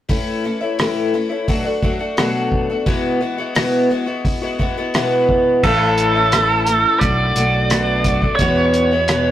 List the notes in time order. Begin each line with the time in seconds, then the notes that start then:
0.09 A2 E3 A3 C#4 E4, kick, open hi-hat
0.44 E3 A3 C#4 E4
0.61 A3 C#4 E4
0.79 A2 E3 A3 C#4 E4, cross-stick, open hi-hat
1.14 E3 A3 C#4 E4
1.29 A3 C#4 E4
1.48 B2 F#3 A3 D4 F#4, kick, open hi-hat
1.64 A3 D4 F#4
1.82 F#3 A3 D4 F#4, kick
1.99 A3 D4 F#4
2.17 B2 F#3 A3 D4 F#4, cross-stick, open hi-hat
2.52 kick
2.70 A3 D4 F#4
2.86 E2 B2 E3 G#3 B3 F#4, kick, open hi-hat
3.20 E3 G#3 B3 F#4
3.38 E3 G#3 B3 F#4
3.55 E2 B2 E3 G#3 B3 F#4, cross-stick, open hi-hat
3.90 E3 G#3 B3 F#4
4.06 E3 G#3 B3 F#4
4.25 kick, open hi-hat
4.42 E3 G#3 B3 F#4
4.59 E3 G#3 B3 F#4, kick
4.77 E3 G#3 B3 F#4
4.94 E2 B2 E3 G#3 B3 F#4, cross-stick, open hi-hat
5.29 kick
5.63 A1 A2 E3 A3 C#4 E4 A4, kick, crash
5.98 closed hi-hat
6.15 A3 C#4 E4
6.32 A2 E3 A3 C#4 E4, cross-stick, closed hi-hat
6.67 E3 A3 C#4 E4, closed hi-hat
7.00 B1 F#3 A3 D4 F#4 D5, kick, closed hi-hat
7.36 B1 F#3 A3 D4 F#4, closed hi-hat
7.70 B2 F#3 A3 D4 F#4, cross-stick, closed hi-hat
8.04 F#3 A3 D4 F#4, kick, closed hi-hat
8.22 A3 D4 F#4, kick
8.36 E2 C#5, kick, closed hi-hat
8.40 E2 B2 E3 G#3 B3 F#4
8.74 closed hi-hat
8.91 E3 G#3 B3 F#4
9.08 E2 B2 E3 G#3 B3 F#4, cross-stick, closed hi-hat